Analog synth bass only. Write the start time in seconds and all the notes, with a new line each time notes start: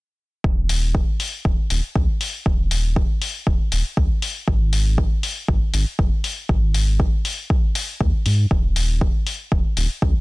0.44 D#1
1.45 D#1
1.70 D#1
1.95 C#2
2.46 D#1
3.47 D#1
3.72 D#1
3.97 C#2
4.48 G#1
5.48 G#1
5.74 G#1
5.99 F1
6.49 G#1
8.01 D#2
8.26 G#2
8.51 D#1
9.52 D#1
9.77 D#1
10.02 C#2